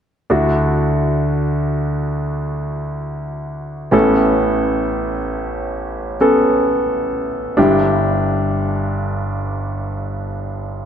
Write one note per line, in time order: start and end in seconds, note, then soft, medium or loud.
0.30 3.90 D2 soft
0.30 3.90 D3 soft
0.30 3.90 D4 soft
0.30 3.90 E4 soft
0.30 3.90 F#4 soft
3.91 7.52 A1 soft
3.91 7.52 A2 soft
3.91 6.16 B3 soft
3.91 6.16 C#4 soft
3.91 6.17 A4 soft
6.21 7.57 B3 soft
6.21 7.57 C#4 soft
6.21 7.57 A4 soft
7.57 10.85 G1 soft
7.57 10.85 G2 soft
7.57 10.85 D4 soft
7.57 10.85 E4 soft
7.57 10.85 G4 soft